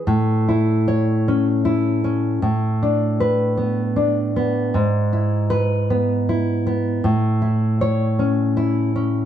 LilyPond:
\new Staff \with { instrumentName = "Nylon-string guitar" } { \time 6/8 \key a \major \tempo 4. = 52 << { r4 cis''4 r4 | r4 b'4 r4 | r4 b'4 r4 | r4 cis''4 r4 | } \\ { a,8 e'4 cis'8 e'8 cis'8 | a,8 d'4 b8 d'8 b8 | gis,8 e'4 b8 e'8 b8 | a,8 e'4 cis'8 e'8 cis'8 | } >> }